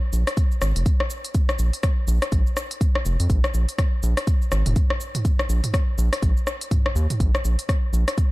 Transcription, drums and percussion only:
0.13 shaker
0.27 cross-stick, closed hi-hat, shaker
0.37 kick, closed hi-hat, shaker
0.52 shaker
0.62 cross-stick, shaker
0.76 closed hi-hat, shaker
0.86 kick, closed hi-hat, shaker
1.00 cross-stick
1.10 shaker
1.25 closed hi-hat, shaker
1.35 kick, closed hi-hat, shaker
1.49 cross-stick, shaker
1.59 shaker
1.73 closed hi-hat, shaker
1.83 kick, cross-stick, closed hi-hat, shaker
2.08 shaker
2.22 cross-stick, closed hi-hat, shaker
2.32 kick, closed hi-hat, shaker
2.47 shaker
2.57 cross-stick, shaker
2.71 closed hi-hat, shaker
2.81 kick, closed hi-hat, shaker
2.95 cross-stick
3.05 shaker
3.20 closed hi-hat, shaker
3.30 kick, closed hi-hat, shaker
3.44 cross-stick, shaker
3.54 shaker
3.69 closed hi-hat, shaker
3.78 kick, cross-stick, closed hi-hat, shaker
4.03 shaker
4.17 cross-stick, closed hi-hat, shaker
4.27 kick, closed hi-hat, shaker
4.42 shaker
4.52 cross-stick, shaker
4.66 closed hi-hat, mid tom, shaker
4.76 kick, closed hi-hat, shaker
4.90 cross-stick
5.00 shaker
5.15 closed hi-hat, mid tom, shaker
5.25 kick, closed hi-hat, shaker
5.39 cross-stick, shaker
5.50 shaker
5.64 closed hi-hat, mid tom, shaker
5.74 kick, cross-stick, closed hi-hat, shaker
5.98 shaker
6.13 cross-stick, closed hi-hat, shaker
6.22 kick, closed hi-hat, shaker
6.37 shaker
6.47 cross-stick, shaker
6.61 closed hi-hat, shaker
6.71 kick, closed hi-hat, mid tom, shaker
6.86 cross-stick
6.96 shaker
7.10 closed hi-hat, mid tom, shaker
7.20 kick, closed hi-hat, shaker
7.35 cross-stick, shaker
7.45 shaker
7.59 closed hi-hat, shaker
7.69 kick, cross-stick, closed hi-hat, shaker
7.94 shaker
8.08 cross-stick, closed hi-hat, shaker
8.18 kick, closed hi-hat, shaker

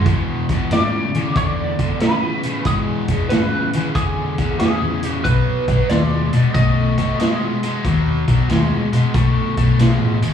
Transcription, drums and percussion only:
0.06 kick, closed hi-hat
0.49 kick, closed hi-hat
0.71 snare, closed hi-hat
1.15 closed hi-hat
1.36 kick, closed hi-hat
1.79 kick, closed hi-hat
2.00 snare, closed hi-hat
2.43 closed hi-hat
2.65 kick, closed hi-hat
3.08 kick, closed hi-hat
3.30 snare, closed hi-hat
3.73 closed hi-hat
3.95 kick, closed hi-hat
4.38 kick, closed hi-hat
4.60 snare, closed hi-hat
5.03 closed hi-hat
5.25 kick, closed hi-hat
5.68 kick, closed hi-hat
5.89 snare, closed hi-hat
6.33 closed hi-hat
6.55 kick, closed hi-hat
6.98 kick, closed hi-hat
7.20 snare, closed hi-hat
7.63 closed hi-hat
7.84 kick, closed hi-hat
8.28 kick, closed hi-hat
8.50 snare, closed hi-hat
8.93 closed hi-hat
9.14 kick, closed hi-hat
9.57 kick, closed hi-hat
9.79 snare, closed hi-hat
10.22 closed hi-hat

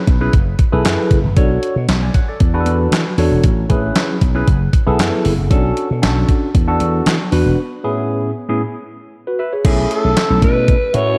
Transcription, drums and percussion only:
0.07 kick, closed hi-hat
0.33 kick, closed hi-hat
0.59 kick, closed hi-hat
0.85 snare, clap, closed hi-hat
1.11 kick, closed hi-hat
1.37 kick, closed hi-hat
1.63 closed hi-hat
1.89 snare, clap, closed hi-hat
2.14 kick, closed hi-hat
2.40 kick, closed hi-hat
2.66 closed hi-hat
2.92 snare, clap, closed hi-hat
3.18 open hi-hat
3.44 kick, closed hi-hat
3.70 kick, closed hi-hat
3.96 snare, clap, closed hi-hat
4.21 kick, closed hi-hat
4.48 kick, closed hi-hat
4.73 kick, closed hi-hat
4.99 snare, clap, closed hi-hat
5.25 open hi-hat
5.51 kick, closed hi-hat
5.77 closed hi-hat
6.03 snare, clap, closed hi-hat
6.29 kick, closed hi-hat
6.55 kick, closed hi-hat
6.80 closed hi-hat
7.06 snare, clap, closed hi-hat
7.32 open hi-hat
9.65 kick, closed hi-hat, crash
9.91 closed hi-hat
10.17 snare, clap, closed hi-hat
10.42 kick, closed hi-hat
10.68 kick, closed hi-hat
10.94 closed hi-hat

